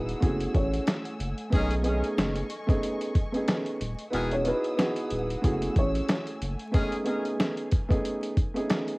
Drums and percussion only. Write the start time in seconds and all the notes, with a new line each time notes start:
0.09 closed hi-hat
0.22 kick, closed hi-hat
0.40 closed hi-hat
0.54 kick, closed hi-hat
0.73 closed hi-hat
0.87 snare, closed hi-hat
1.05 closed hi-hat
1.20 closed hi-hat
1.38 closed hi-hat
1.52 kick, closed hi-hat
1.71 closed hi-hat
1.84 closed hi-hat
2.04 closed hi-hat
2.18 snare, closed hi-hat
2.35 closed hi-hat
2.50 closed hi-hat
2.69 kick, closed hi-hat
2.83 closed hi-hat
3.01 closed hi-hat
3.15 kick, closed hi-hat
3.34 closed hi-hat
3.48 snare, closed hi-hat
3.66 closed hi-hat
3.81 closed hi-hat
3.99 closed hi-hat
4.13 closed hi-hat
4.31 closed hi-hat
4.45 closed hi-hat
4.64 closed hi-hat
4.79 snare, closed hi-hat
4.96 closed hi-hat
5.11 closed hi-hat
5.30 closed hi-hat
5.44 kick, closed hi-hat
5.62 closed hi-hat
5.76 kick, closed hi-hat
5.95 closed hi-hat
6.09 snare, closed hi-hat
6.27 closed hi-hat
6.42 closed hi-hat
6.59 closed hi-hat
6.74 kick, closed hi-hat
6.92 closed hi-hat
7.06 closed hi-hat
7.25 closed hi-hat
7.40 snare, closed hi-hat
7.57 closed hi-hat
7.71 kick, closed hi-hat
7.91 kick, closed hi-hat
8.05 closed hi-hat
8.23 closed hi-hat
8.37 kick, closed hi-hat
8.56 closed hi-hat
8.70 snare, closed hi-hat
8.88 closed hi-hat